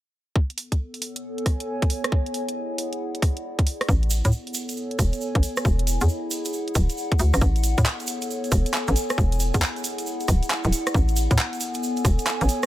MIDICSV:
0, 0, Header, 1, 4, 480
1, 0, Start_track
1, 0, Key_signature, 3, "major"
1, 0, Tempo, 441176
1, 387, Time_signature, 4, 2, 24, 8
1, 13774, End_track
2, 0, Start_track
2, 0, Title_t, "Ambient pad"
2, 0, Program_c, 0, 92
2, 384, Note_on_c, 0, 59, 67
2, 588, Note_on_c, 0, 69, 68
2, 993, Note_on_c, 0, 73, 85
2, 1278, Note_on_c, 0, 80, 80
2, 2306, Note_off_c, 0, 69, 0
2, 2307, Note_on_c, 0, 64, 67
2, 2608, Note_off_c, 0, 59, 0
2, 2609, Note_off_c, 0, 73, 0
2, 2609, Note_off_c, 0, 80, 0
2, 2656, Note_on_c, 0, 78, 74
2, 2657, Note_on_c, 0, 68, 72
2, 3178, Note_on_c, 0, 74, 80
2, 3508, Note_off_c, 0, 68, 0
2, 4227, Note_on_c, 0, 59, 76
2, 4228, Note_off_c, 0, 74, 0
2, 4649, Note_on_c, 0, 69, 78
2, 4671, Note_on_c, 0, 73, 81
2, 4871, Note_off_c, 0, 78, 0
2, 5009, Note_off_c, 0, 64, 0
2, 5118, Note_on_c, 0, 80, 76
2, 6147, Note_off_c, 0, 69, 0
2, 6147, Note_on_c, 0, 64, 75
2, 6449, Note_off_c, 0, 73, 0
2, 6449, Note_off_c, 0, 80, 0
2, 6450, Note_off_c, 0, 59, 0
2, 6494, Note_on_c, 0, 68, 69
2, 6494, Note_on_c, 0, 78, 68
2, 7345, Note_on_c, 0, 74, 76
2, 7346, Note_off_c, 0, 68, 0
2, 8067, Note_off_c, 0, 74, 0
2, 8067, Note_on_c, 0, 59, 72
2, 8297, Note_on_c, 0, 69, 86
2, 8427, Note_on_c, 0, 73, 85
2, 8714, Note_off_c, 0, 64, 0
2, 8848, Note_off_c, 0, 78, 0
2, 8957, Note_on_c, 0, 80, 69
2, 9983, Note_on_c, 0, 64, 72
2, 9986, Note_off_c, 0, 69, 0
2, 10288, Note_off_c, 0, 80, 0
2, 10289, Note_off_c, 0, 59, 0
2, 10290, Note_off_c, 0, 73, 0
2, 10336, Note_on_c, 0, 78, 75
2, 10337, Note_on_c, 0, 68, 79
2, 11188, Note_off_c, 0, 68, 0
2, 11266, Note_on_c, 0, 74, 73
2, 11906, Note_on_c, 0, 59, 86
2, 11908, Note_off_c, 0, 74, 0
2, 12108, Note_on_c, 0, 80, 85
2, 12462, Note_on_c, 0, 69, 69
2, 12688, Note_off_c, 0, 64, 0
2, 12689, Note_off_c, 0, 78, 0
2, 12769, Note_on_c, 0, 73, 69
2, 13774, Note_off_c, 0, 59, 0
2, 13774, Note_off_c, 0, 69, 0
2, 13774, Note_off_c, 0, 73, 0
2, 13774, Note_off_c, 0, 80, 0
2, 13774, End_track
3, 0, Start_track
3, 0, Title_t, "FM bass"
3, 0, Program_c, 1, 39
3, 4227, Note_on_c, 1, 33, 92
3, 4592, Note_off_c, 1, 33, 0
3, 4622, Note_on_c, 1, 45, 80
3, 4696, Note_off_c, 1, 45, 0
3, 5427, Note_on_c, 1, 28, 97
3, 5563, Note_off_c, 1, 28, 0
3, 5822, Note_on_c, 1, 33, 92
3, 5897, Note_off_c, 1, 33, 0
3, 6146, Note_on_c, 1, 28, 94
3, 6511, Note_off_c, 1, 28, 0
3, 6543, Note_on_c, 1, 40, 82
3, 6617, Note_off_c, 1, 40, 0
3, 7347, Note_on_c, 1, 26, 97
3, 7483, Note_off_c, 1, 26, 0
3, 7828, Note_on_c, 1, 38, 91
3, 7964, Note_off_c, 1, 38, 0
3, 7982, Note_on_c, 1, 33, 86
3, 8057, Note_off_c, 1, 33, 0
3, 8067, Note_on_c, 1, 33, 95
3, 8432, Note_off_c, 1, 33, 0
3, 8463, Note_on_c, 1, 45, 80
3, 8537, Note_off_c, 1, 45, 0
3, 9267, Note_on_c, 1, 28, 99
3, 9403, Note_off_c, 1, 28, 0
3, 9662, Note_on_c, 1, 33, 92
3, 9737, Note_off_c, 1, 33, 0
3, 9987, Note_on_c, 1, 28, 97
3, 10352, Note_off_c, 1, 28, 0
3, 10383, Note_on_c, 1, 40, 83
3, 10457, Note_off_c, 1, 40, 0
3, 11187, Note_on_c, 1, 26, 99
3, 11324, Note_off_c, 1, 26, 0
3, 11583, Note_on_c, 1, 26, 95
3, 11657, Note_off_c, 1, 26, 0
3, 11908, Note_on_c, 1, 33, 98
3, 12272, Note_off_c, 1, 33, 0
3, 12304, Note_on_c, 1, 45, 82
3, 12377, Note_off_c, 1, 45, 0
3, 13107, Note_on_c, 1, 28, 99
3, 13244, Note_off_c, 1, 28, 0
3, 13505, Note_on_c, 1, 33, 95
3, 13578, Note_off_c, 1, 33, 0
3, 13774, End_track
4, 0, Start_track
4, 0, Title_t, "Drums"
4, 387, Note_on_c, 9, 36, 108
4, 495, Note_off_c, 9, 36, 0
4, 544, Note_on_c, 9, 42, 48
4, 627, Note_on_c, 9, 46, 104
4, 653, Note_off_c, 9, 42, 0
4, 736, Note_off_c, 9, 46, 0
4, 782, Note_on_c, 9, 36, 54
4, 784, Note_on_c, 9, 42, 60
4, 891, Note_off_c, 9, 36, 0
4, 892, Note_off_c, 9, 42, 0
4, 1023, Note_on_c, 9, 46, 58
4, 1107, Note_off_c, 9, 46, 0
4, 1107, Note_on_c, 9, 46, 100
4, 1216, Note_off_c, 9, 46, 0
4, 1263, Note_on_c, 9, 42, 59
4, 1372, Note_off_c, 9, 42, 0
4, 1503, Note_on_c, 9, 42, 34
4, 1587, Note_on_c, 9, 36, 97
4, 1587, Note_on_c, 9, 37, 31
4, 1587, Note_on_c, 9, 46, 100
4, 1612, Note_off_c, 9, 42, 0
4, 1696, Note_off_c, 9, 36, 0
4, 1696, Note_off_c, 9, 37, 0
4, 1696, Note_off_c, 9, 46, 0
4, 1744, Note_on_c, 9, 42, 59
4, 1852, Note_off_c, 9, 42, 0
4, 1983, Note_on_c, 9, 36, 93
4, 1983, Note_on_c, 9, 42, 48
4, 2067, Note_on_c, 9, 46, 102
4, 2092, Note_off_c, 9, 36, 0
4, 2092, Note_off_c, 9, 42, 0
4, 2176, Note_off_c, 9, 46, 0
4, 2223, Note_on_c, 9, 37, 65
4, 2223, Note_on_c, 9, 42, 59
4, 2307, Note_on_c, 9, 36, 114
4, 2331, Note_off_c, 9, 37, 0
4, 2331, Note_off_c, 9, 42, 0
4, 2416, Note_off_c, 9, 36, 0
4, 2463, Note_on_c, 9, 42, 45
4, 2548, Note_on_c, 9, 46, 102
4, 2572, Note_off_c, 9, 42, 0
4, 2657, Note_off_c, 9, 46, 0
4, 2704, Note_on_c, 9, 42, 58
4, 2813, Note_off_c, 9, 42, 0
4, 3029, Note_on_c, 9, 46, 99
4, 3137, Note_off_c, 9, 46, 0
4, 3184, Note_on_c, 9, 42, 60
4, 3293, Note_off_c, 9, 42, 0
4, 3424, Note_on_c, 9, 42, 33
4, 3507, Note_on_c, 9, 36, 104
4, 3509, Note_on_c, 9, 37, 31
4, 3509, Note_on_c, 9, 46, 103
4, 3533, Note_off_c, 9, 42, 0
4, 3616, Note_off_c, 9, 36, 0
4, 3618, Note_off_c, 9, 37, 0
4, 3618, Note_off_c, 9, 46, 0
4, 3664, Note_on_c, 9, 42, 59
4, 3772, Note_off_c, 9, 42, 0
4, 3903, Note_on_c, 9, 36, 100
4, 3904, Note_on_c, 9, 42, 46
4, 3989, Note_on_c, 9, 46, 100
4, 4011, Note_off_c, 9, 36, 0
4, 4013, Note_off_c, 9, 42, 0
4, 4097, Note_off_c, 9, 46, 0
4, 4145, Note_on_c, 9, 37, 64
4, 4145, Note_on_c, 9, 46, 59
4, 4227, Note_on_c, 9, 36, 120
4, 4232, Note_on_c, 9, 82, 36
4, 4254, Note_off_c, 9, 37, 0
4, 4254, Note_off_c, 9, 46, 0
4, 4336, Note_off_c, 9, 36, 0
4, 4341, Note_off_c, 9, 82, 0
4, 4384, Note_on_c, 9, 42, 47
4, 4465, Note_on_c, 9, 82, 100
4, 4467, Note_on_c, 9, 46, 101
4, 4493, Note_off_c, 9, 42, 0
4, 4574, Note_off_c, 9, 82, 0
4, 4576, Note_off_c, 9, 46, 0
4, 4621, Note_on_c, 9, 82, 51
4, 4623, Note_on_c, 9, 36, 61
4, 4623, Note_on_c, 9, 42, 58
4, 4699, Note_off_c, 9, 82, 0
4, 4699, Note_on_c, 9, 82, 38
4, 4731, Note_off_c, 9, 36, 0
4, 4732, Note_off_c, 9, 42, 0
4, 4808, Note_off_c, 9, 82, 0
4, 4863, Note_on_c, 9, 46, 56
4, 4939, Note_on_c, 9, 82, 93
4, 4947, Note_off_c, 9, 46, 0
4, 4947, Note_on_c, 9, 46, 96
4, 5048, Note_off_c, 9, 82, 0
4, 5056, Note_off_c, 9, 46, 0
4, 5101, Note_on_c, 9, 82, 55
4, 5103, Note_on_c, 9, 42, 58
4, 5187, Note_off_c, 9, 82, 0
4, 5187, Note_on_c, 9, 82, 35
4, 5212, Note_off_c, 9, 42, 0
4, 5295, Note_off_c, 9, 82, 0
4, 5343, Note_on_c, 9, 42, 35
4, 5427, Note_on_c, 9, 36, 104
4, 5427, Note_on_c, 9, 37, 31
4, 5427, Note_on_c, 9, 46, 100
4, 5432, Note_on_c, 9, 82, 89
4, 5452, Note_off_c, 9, 42, 0
4, 5536, Note_off_c, 9, 36, 0
4, 5536, Note_off_c, 9, 37, 0
4, 5536, Note_off_c, 9, 46, 0
4, 5540, Note_off_c, 9, 82, 0
4, 5579, Note_on_c, 9, 82, 55
4, 5583, Note_on_c, 9, 42, 59
4, 5668, Note_off_c, 9, 82, 0
4, 5668, Note_on_c, 9, 82, 39
4, 5691, Note_off_c, 9, 42, 0
4, 5777, Note_off_c, 9, 82, 0
4, 5823, Note_on_c, 9, 36, 104
4, 5823, Note_on_c, 9, 42, 46
4, 5907, Note_on_c, 9, 46, 97
4, 5910, Note_on_c, 9, 82, 88
4, 5931, Note_off_c, 9, 36, 0
4, 5932, Note_off_c, 9, 42, 0
4, 6016, Note_off_c, 9, 46, 0
4, 6019, Note_off_c, 9, 82, 0
4, 6056, Note_on_c, 9, 82, 51
4, 6063, Note_on_c, 9, 37, 65
4, 6063, Note_on_c, 9, 42, 59
4, 6147, Note_on_c, 9, 36, 116
4, 6148, Note_off_c, 9, 82, 0
4, 6148, Note_on_c, 9, 82, 39
4, 6172, Note_off_c, 9, 37, 0
4, 6172, Note_off_c, 9, 42, 0
4, 6256, Note_off_c, 9, 36, 0
4, 6257, Note_off_c, 9, 82, 0
4, 6303, Note_on_c, 9, 42, 48
4, 6387, Note_on_c, 9, 46, 95
4, 6394, Note_on_c, 9, 82, 97
4, 6412, Note_off_c, 9, 42, 0
4, 6496, Note_off_c, 9, 46, 0
4, 6503, Note_off_c, 9, 82, 0
4, 6537, Note_on_c, 9, 82, 56
4, 6543, Note_on_c, 9, 42, 59
4, 6623, Note_off_c, 9, 82, 0
4, 6623, Note_on_c, 9, 82, 41
4, 6651, Note_off_c, 9, 42, 0
4, 6731, Note_off_c, 9, 82, 0
4, 6863, Note_on_c, 9, 82, 88
4, 6868, Note_on_c, 9, 46, 97
4, 6972, Note_off_c, 9, 82, 0
4, 6976, Note_off_c, 9, 46, 0
4, 7017, Note_on_c, 9, 82, 47
4, 7024, Note_on_c, 9, 42, 60
4, 7107, Note_off_c, 9, 82, 0
4, 7107, Note_on_c, 9, 82, 43
4, 7133, Note_off_c, 9, 42, 0
4, 7216, Note_off_c, 9, 82, 0
4, 7264, Note_on_c, 9, 42, 35
4, 7344, Note_on_c, 9, 82, 89
4, 7347, Note_on_c, 9, 36, 103
4, 7348, Note_on_c, 9, 37, 30
4, 7348, Note_on_c, 9, 46, 95
4, 7373, Note_off_c, 9, 42, 0
4, 7453, Note_off_c, 9, 82, 0
4, 7456, Note_off_c, 9, 36, 0
4, 7457, Note_off_c, 9, 37, 0
4, 7457, Note_off_c, 9, 46, 0
4, 7502, Note_on_c, 9, 82, 49
4, 7503, Note_on_c, 9, 42, 59
4, 7588, Note_off_c, 9, 82, 0
4, 7588, Note_on_c, 9, 82, 39
4, 7612, Note_off_c, 9, 42, 0
4, 7697, Note_off_c, 9, 82, 0
4, 7742, Note_on_c, 9, 36, 102
4, 7743, Note_on_c, 9, 42, 49
4, 7820, Note_on_c, 9, 82, 83
4, 7827, Note_on_c, 9, 46, 96
4, 7851, Note_off_c, 9, 36, 0
4, 7852, Note_off_c, 9, 42, 0
4, 7929, Note_off_c, 9, 82, 0
4, 7936, Note_off_c, 9, 46, 0
4, 7981, Note_on_c, 9, 82, 56
4, 7983, Note_on_c, 9, 37, 62
4, 7983, Note_on_c, 9, 46, 55
4, 8064, Note_off_c, 9, 82, 0
4, 8064, Note_on_c, 9, 82, 46
4, 8067, Note_on_c, 9, 36, 115
4, 8092, Note_off_c, 9, 37, 0
4, 8092, Note_off_c, 9, 46, 0
4, 8173, Note_off_c, 9, 82, 0
4, 8176, Note_off_c, 9, 36, 0
4, 8223, Note_on_c, 9, 42, 50
4, 8227, Note_on_c, 9, 82, 23
4, 8307, Note_off_c, 9, 82, 0
4, 8307, Note_on_c, 9, 46, 105
4, 8307, Note_on_c, 9, 82, 88
4, 8332, Note_off_c, 9, 42, 0
4, 8416, Note_off_c, 9, 46, 0
4, 8416, Note_off_c, 9, 82, 0
4, 8462, Note_on_c, 9, 82, 35
4, 8463, Note_on_c, 9, 36, 102
4, 8463, Note_on_c, 9, 42, 65
4, 8548, Note_on_c, 9, 39, 114
4, 8550, Note_off_c, 9, 82, 0
4, 8550, Note_on_c, 9, 82, 47
4, 8571, Note_off_c, 9, 36, 0
4, 8572, Note_off_c, 9, 42, 0
4, 8657, Note_off_c, 9, 39, 0
4, 8659, Note_off_c, 9, 82, 0
4, 8703, Note_on_c, 9, 82, 27
4, 8704, Note_on_c, 9, 42, 35
4, 8779, Note_off_c, 9, 82, 0
4, 8779, Note_on_c, 9, 82, 91
4, 8788, Note_on_c, 9, 46, 90
4, 8813, Note_off_c, 9, 42, 0
4, 8887, Note_off_c, 9, 82, 0
4, 8897, Note_off_c, 9, 46, 0
4, 8939, Note_on_c, 9, 82, 37
4, 8944, Note_on_c, 9, 42, 64
4, 9036, Note_off_c, 9, 82, 0
4, 9036, Note_on_c, 9, 82, 48
4, 9053, Note_off_c, 9, 42, 0
4, 9144, Note_off_c, 9, 82, 0
4, 9183, Note_on_c, 9, 42, 36
4, 9187, Note_on_c, 9, 82, 26
4, 9267, Note_off_c, 9, 82, 0
4, 9267, Note_on_c, 9, 36, 105
4, 9267, Note_on_c, 9, 37, 33
4, 9267, Note_on_c, 9, 46, 110
4, 9267, Note_on_c, 9, 82, 89
4, 9292, Note_off_c, 9, 42, 0
4, 9376, Note_off_c, 9, 36, 0
4, 9376, Note_off_c, 9, 37, 0
4, 9376, Note_off_c, 9, 46, 0
4, 9376, Note_off_c, 9, 82, 0
4, 9423, Note_on_c, 9, 42, 61
4, 9426, Note_on_c, 9, 82, 35
4, 9506, Note_off_c, 9, 82, 0
4, 9506, Note_on_c, 9, 82, 54
4, 9507, Note_on_c, 9, 39, 115
4, 9532, Note_off_c, 9, 42, 0
4, 9615, Note_off_c, 9, 82, 0
4, 9616, Note_off_c, 9, 39, 0
4, 9655, Note_on_c, 9, 82, 26
4, 9663, Note_on_c, 9, 42, 51
4, 9747, Note_on_c, 9, 46, 90
4, 9752, Note_off_c, 9, 82, 0
4, 9752, Note_on_c, 9, 82, 92
4, 9771, Note_off_c, 9, 42, 0
4, 9856, Note_off_c, 9, 46, 0
4, 9861, Note_off_c, 9, 82, 0
4, 9896, Note_on_c, 9, 82, 40
4, 9903, Note_on_c, 9, 37, 67
4, 9903, Note_on_c, 9, 42, 62
4, 9987, Note_on_c, 9, 36, 118
4, 9993, Note_off_c, 9, 82, 0
4, 9993, Note_on_c, 9, 82, 52
4, 10012, Note_off_c, 9, 37, 0
4, 10012, Note_off_c, 9, 42, 0
4, 10096, Note_off_c, 9, 36, 0
4, 10101, Note_off_c, 9, 82, 0
4, 10143, Note_on_c, 9, 42, 49
4, 10150, Note_on_c, 9, 82, 27
4, 10223, Note_off_c, 9, 82, 0
4, 10223, Note_on_c, 9, 82, 89
4, 10228, Note_on_c, 9, 46, 105
4, 10252, Note_off_c, 9, 42, 0
4, 10332, Note_off_c, 9, 82, 0
4, 10337, Note_off_c, 9, 46, 0
4, 10379, Note_on_c, 9, 82, 42
4, 10383, Note_on_c, 9, 36, 103
4, 10383, Note_on_c, 9, 42, 62
4, 10467, Note_on_c, 9, 39, 119
4, 10469, Note_off_c, 9, 82, 0
4, 10469, Note_on_c, 9, 82, 55
4, 10492, Note_off_c, 9, 36, 0
4, 10492, Note_off_c, 9, 42, 0
4, 10576, Note_off_c, 9, 39, 0
4, 10578, Note_off_c, 9, 82, 0
4, 10623, Note_on_c, 9, 42, 35
4, 10632, Note_on_c, 9, 82, 24
4, 10707, Note_on_c, 9, 46, 92
4, 10709, Note_off_c, 9, 82, 0
4, 10709, Note_on_c, 9, 82, 93
4, 10732, Note_off_c, 9, 42, 0
4, 10815, Note_off_c, 9, 46, 0
4, 10818, Note_off_c, 9, 82, 0
4, 10863, Note_on_c, 9, 42, 62
4, 10870, Note_on_c, 9, 82, 37
4, 10949, Note_off_c, 9, 82, 0
4, 10949, Note_on_c, 9, 82, 50
4, 10972, Note_off_c, 9, 42, 0
4, 11058, Note_off_c, 9, 82, 0
4, 11101, Note_on_c, 9, 82, 27
4, 11104, Note_on_c, 9, 42, 34
4, 11187, Note_off_c, 9, 82, 0
4, 11187, Note_on_c, 9, 36, 106
4, 11187, Note_on_c, 9, 37, 33
4, 11187, Note_on_c, 9, 46, 103
4, 11187, Note_on_c, 9, 82, 92
4, 11213, Note_off_c, 9, 42, 0
4, 11296, Note_off_c, 9, 36, 0
4, 11296, Note_off_c, 9, 37, 0
4, 11296, Note_off_c, 9, 46, 0
4, 11296, Note_off_c, 9, 82, 0
4, 11344, Note_on_c, 9, 42, 61
4, 11349, Note_on_c, 9, 82, 40
4, 11426, Note_off_c, 9, 82, 0
4, 11426, Note_on_c, 9, 82, 48
4, 11428, Note_on_c, 9, 39, 120
4, 11453, Note_off_c, 9, 42, 0
4, 11535, Note_off_c, 9, 82, 0
4, 11537, Note_off_c, 9, 39, 0
4, 11574, Note_on_c, 9, 82, 27
4, 11584, Note_on_c, 9, 42, 49
4, 11668, Note_on_c, 9, 46, 91
4, 11674, Note_off_c, 9, 82, 0
4, 11674, Note_on_c, 9, 82, 94
4, 11693, Note_off_c, 9, 42, 0
4, 11777, Note_off_c, 9, 46, 0
4, 11783, Note_off_c, 9, 82, 0
4, 11824, Note_on_c, 9, 37, 68
4, 11824, Note_on_c, 9, 42, 60
4, 11824, Note_on_c, 9, 82, 40
4, 11908, Note_on_c, 9, 36, 121
4, 11917, Note_off_c, 9, 82, 0
4, 11917, Note_on_c, 9, 82, 55
4, 11933, Note_off_c, 9, 37, 0
4, 11933, Note_off_c, 9, 42, 0
4, 12016, Note_off_c, 9, 36, 0
4, 12026, Note_off_c, 9, 82, 0
4, 12058, Note_on_c, 9, 82, 25
4, 12064, Note_on_c, 9, 42, 47
4, 12146, Note_off_c, 9, 82, 0
4, 12146, Note_on_c, 9, 82, 95
4, 12147, Note_on_c, 9, 46, 101
4, 12173, Note_off_c, 9, 42, 0
4, 12255, Note_off_c, 9, 82, 0
4, 12256, Note_off_c, 9, 46, 0
4, 12303, Note_on_c, 9, 36, 109
4, 12304, Note_on_c, 9, 42, 60
4, 12304, Note_on_c, 9, 82, 37
4, 12386, Note_off_c, 9, 82, 0
4, 12386, Note_on_c, 9, 82, 51
4, 12388, Note_on_c, 9, 39, 122
4, 12412, Note_off_c, 9, 36, 0
4, 12413, Note_off_c, 9, 42, 0
4, 12495, Note_off_c, 9, 82, 0
4, 12496, Note_off_c, 9, 39, 0
4, 12544, Note_on_c, 9, 42, 34
4, 12554, Note_on_c, 9, 82, 26
4, 12624, Note_off_c, 9, 82, 0
4, 12624, Note_on_c, 9, 82, 92
4, 12628, Note_on_c, 9, 46, 89
4, 12653, Note_off_c, 9, 42, 0
4, 12733, Note_off_c, 9, 82, 0
4, 12737, Note_off_c, 9, 46, 0
4, 12773, Note_on_c, 9, 82, 36
4, 12783, Note_on_c, 9, 42, 62
4, 12873, Note_off_c, 9, 82, 0
4, 12873, Note_on_c, 9, 82, 53
4, 12892, Note_off_c, 9, 42, 0
4, 12982, Note_off_c, 9, 82, 0
4, 13020, Note_on_c, 9, 82, 27
4, 13024, Note_on_c, 9, 42, 35
4, 13107, Note_on_c, 9, 36, 109
4, 13107, Note_on_c, 9, 37, 31
4, 13107, Note_on_c, 9, 46, 99
4, 13111, Note_off_c, 9, 82, 0
4, 13111, Note_on_c, 9, 82, 87
4, 13133, Note_off_c, 9, 42, 0
4, 13216, Note_off_c, 9, 36, 0
4, 13216, Note_off_c, 9, 37, 0
4, 13216, Note_off_c, 9, 46, 0
4, 13220, Note_off_c, 9, 82, 0
4, 13261, Note_on_c, 9, 82, 44
4, 13263, Note_on_c, 9, 42, 60
4, 13347, Note_on_c, 9, 39, 124
4, 13349, Note_off_c, 9, 82, 0
4, 13349, Note_on_c, 9, 82, 58
4, 13372, Note_off_c, 9, 42, 0
4, 13456, Note_off_c, 9, 39, 0
4, 13458, Note_off_c, 9, 82, 0
4, 13503, Note_on_c, 9, 42, 49
4, 13512, Note_on_c, 9, 82, 26
4, 13588, Note_off_c, 9, 82, 0
4, 13588, Note_on_c, 9, 46, 87
4, 13588, Note_on_c, 9, 82, 86
4, 13612, Note_off_c, 9, 42, 0
4, 13696, Note_off_c, 9, 46, 0
4, 13697, Note_off_c, 9, 82, 0
4, 13739, Note_on_c, 9, 82, 39
4, 13774, Note_off_c, 9, 82, 0
4, 13774, End_track
0, 0, End_of_file